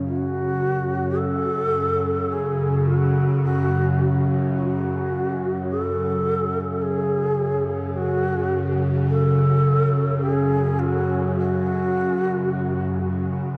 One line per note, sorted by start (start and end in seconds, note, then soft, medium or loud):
0.00 13.57 F#2 medium
0.00 13.57 C#3 medium
0.06 0.17 F4 medium
0.17 1.20 F#4 medium
1.19 2.34 A4 medium
2.32 2.89 G#4 medium
2.87 3.43 F#4 medium
3.44 4.25 F#4 medium
4.57 5.66 F#4 medium
5.70 6.84 A4 medium
6.82 7.98 G#4 medium
7.96 8.81 F#4 medium
9.10 10.24 A4 medium
10.22 10.81 G#4 medium
10.79 11.36 F#4 medium
11.38 13.03 F#4 medium